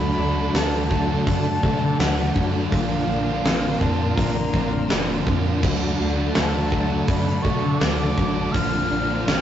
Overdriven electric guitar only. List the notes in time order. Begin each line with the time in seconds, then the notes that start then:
Already playing: D3 A3 D4 F#4
0.35 A3 D4 F#4
0.53 D3 A3 D4 F#4
0.90 D3 A3 D4 F#4
1.08 A3 D4 F#4
1.46 muted overdriven electric guitar stroke
1.64 D3 A3 D4 F#4
1.82 muted overdriven electric guitar stroke
1.99 D3 A3 D4 F#4
2.35 D3 A3 D4 F#4
2.53 A3 D4 F#4
2.71 A#2 D3 A#3 D4 F4
3.26 A#3 D4 F4
3.44 A#2 D3 A#3 D4 F4
3.81 D3 A#3 D4 F4
3.98 A#3 D4 F4
4.35 muted overdriven electric guitar stroke
4.53 D3 A#3 D4 F4
4.72 muted overdriven electric guitar stroke
4.88 A#2 D3 A#3 D4 F4
5.26 D3 A#3 D4 F4
5.44 A#3 D4 F4
5.61 D3 A3 D4
5.65 F#4
6.16 A3 D4 F#4
6.35 D3 A3 D4 F#4
6.71 D3 A3 D4 F#4
6.88 A3 D4 F#4
7.27 muted overdriven electric guitar stroke
7.43 D3 A3 D4 F#4
7.62 muted overdriven electric guitar stroke
7.79 D3 A3 D4 F#4
8.15 D3 A3 D4 F#4
8.35 A3 D4 F#4
8.53 A#2 D3 A#3 D4 F4
9.08 A#3 D4 F4
9.26 A#2 D3 A#3 D4 F4